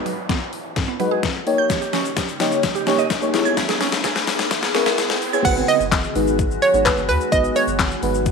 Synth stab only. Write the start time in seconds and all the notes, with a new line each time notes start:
Already playing: G#3 D#4 F#4 B4
0.99 G#3 D#4 F#4 B4
1.46 A#3 D#4 G4 C#5
2.40 A#3 D#4 G4 C#5
2.87 A#3 D#4 G4 C#5
3.22 A#3 D#4 G4 C#5
3.33 B3 E4 G#4 C#5
4.74 B3 E4 G#4 A#4
5.33 B3 E4 G#4 C#5
5.45 G#3 B3 D#4 F#4 B4
6.15 G#3 B3 D#4 F#4 B4
6.74 G#3 B3 D#4 F#4 C#5
7.32 G#3 B3 D#4 F#4 B4
8.02 G#3 B3 D#4 F#4 B4